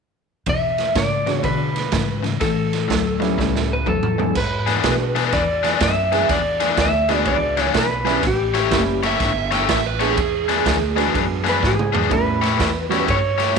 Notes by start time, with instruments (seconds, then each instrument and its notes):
0.46 upright bass E2, overdriven electric guitar E2 B2, electric slide guitar E5, kick, ride
0.78 snare, ride
0.95 overdriven electric guitar E2 C#3, upright bass G#2, electric slide guitar D5, kick, snare, ride
1.26 overdriven electric guitar E2 C#3, grand piano G#3 B3 D4 F#4, snare, ride
1.34 electric slide guitar C#5
1.43 overdriven electric guitar E2 D3, upright bass B2, electric slide guitar B4, kick, ride
1.76 snare, ride
1.92 overdriven electric guitar E2 C#3, upright bass G#2, kick, snare, ride
2.22 overdriven electric guitar E2 C#3, snare, ride
2.40 overdriven electric guitar A2 E3, upright bass A2, electric slide guitar A4, kick, snare, ride
2.73 snare, ride
2.88 upright bass D2, overdriven electric guitar A2 F#3, kick, snare, ride
3.20 overdriven electric guitar A2 F#3, grand piano G3 B3 C#4 E4, snare, ride
3.38 upright bass C#2, overdriven electric guitar A2 G3, kick, snare
3.56 snare
3.73 electric slide guitar B4
3.86 upright bass E2, overdriven electric guitar A2 F#3, electric slide guitar A4, kick, mid tom
4.03 mid tom
4.18 grand piano E2 G#3 B3 D4 G#4, overdriven electric guitar A2 F#3, floor tom
4.35 upright bass G#2, electric slide guitar B4, kick, snare, crash
4.66 overdriven electric guitar E3 B3 D4 G#4, snare, ride
4.83 upright bass B2, grand piano G#3 B3 D4 F#4, kick, snare, ride
5.15 overdriven electric guitar E3 B3 D4 G#4, snare, ride
5.32 upright bass E2, electric slide guitar D5, kick, snare, ride
5.63 overdriven electric guitar E3 B3 D4 G#4, snare, ride
5.80 upright bass F#2, electric slide guitar E5, kick, snare, ride
6.12 overdriven electric guitar E3 B3 D4 G#4, grand piano G#3 B3 D4 G#4, snare, ride
6.29 upright bass E2, electric slide guitar D5, kick, snare, ride
6.60 overdriven electric guitar E3 B3 D4 G#4, snare, ride
6.77 upright bass D2, electric slide guitar E5, kick, snare, ride
7.09 overdriven electric guitar E3 B3 D4 G#4, grand piano G#3 B3 D4 F#4, snare, ride
7.25 upright bass C#2, electric slide guitar D5, kick, ride
7.57 overdriven electric guitar E3 B3 D4 G#4, electric slide guitar C#5, snare, ride
7.74 upright bass B1, electric slide guitar B4, kick, snare, ride
8.04 overdriven electric guitar E3 B3 D4 G#4, grand piano G3 B3 C#4 E4, snare, ride
8.23 upright bass A1, kick, snare, ride
8.27 electric slide guitar G4
8.54 overdriven electric guitar A3 E4 G4 C#5, snare, ride
8.71 upright bass F#1, grand piano G3 B3 C#4 E4, kick, snare, ride
9.03 overdriven electric guitar A3 E4 G4 C#5, electric slide guitar E5, snare, ride
9.20 upright bass G1, kick, snare, ride
9.51 overdriven electric guitar A3 E4 G4 C#5, electric slide guitar G5, snare, ride
9.69 upright bass A1, electric slide guitar E5, kick, snare, ride
9.86 electric slide guitar B4
9.99 grand piano G#3 B3 D4 G#4, overdriven electric guitar A3 E4 G4 C#5, electric slide guitar G#4, snare, ride
10.17 upright bass E2, kick, ride
10.48 overdriven electric guitar E3 B3 D4 G#4, snare, ride
10.66 upright bass D2, kick, snare, ride
10.95 overdriven electric guitar E3 B3 D4 G#4, grand piano G#3 B3 D4 F#4, snare, ride
11.14 upright bass F#2, kick, ride
11.44 overdriven electric guitar E3 B3 D4 G#4, snare, ride
11.49 electric slide guitar B4
11.63 upright bass G#2, electric slide guitar G#4, kick, snare
11.79 mid tom
11.93 overdriven electric guitar E3 B3 D4 G#4, floor tom
12.09 upright bass A2, grand piano G3 B3 C#4 E4, kick, ride
12.13 electric slide guitar B4
12.42 overdriven electric guitar A3 E4 G4 C#5, snare, ride
12.59 upright bass E2, kick, snare, ride
12.89 grand piano G3 B3 C#4 F#4, overdriven electric guitar A3 E4 G4 C#5, snare, ride
13.08 upright bass G2, electric slide guitar C#5, kick, ride
13.38 overdriven electric guitar A3 E4 G4 C#5, snare, ride